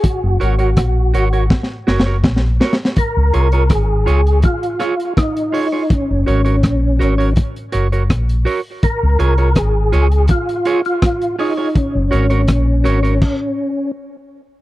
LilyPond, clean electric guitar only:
\new Staff \with { instrumentName = "Clean electric guitar" } { \time 4/4 \key ges \lydian \tempo 4 = 82 r8 <ges' bes' des''>16 <ges' bes' des''>16 r8 <ges' bes' des''>16 <ges' bes' des''>16 r8 <ges' bes' des''>16 <ges' bes' des''>16 r8 <ges' bes' des''>16 r16 | r8 <f' aes' des''>16 <f' aes' des''>16 r8 <f' aes' des''>16 r8. <f' aes' des''>16 r8. <f' aes' des''>16 <f' aes' des''>16 | r8 <ges' bes' des''>16 <ges' bes' des''>16 r8 <ges' bes' des''>16 <ges' bes' des''>16 r8 <ges' bes' des''>16 <ges' bes' des''>16 r8 <ges' bes' des''>16 r16 | r8 <f' aes' des''>16 <f' aes' des''>16 r8 <f' aes' des''>16 r8. <f' aes' des''>16 r8. <f' aes' des''>16 <f' aes' des''>16 |
r8 <ges' bes' des''>16 <ges' bes' des''>16 r8 <ges' bes' des''>16 <ges' bes' des''>16 r2 | }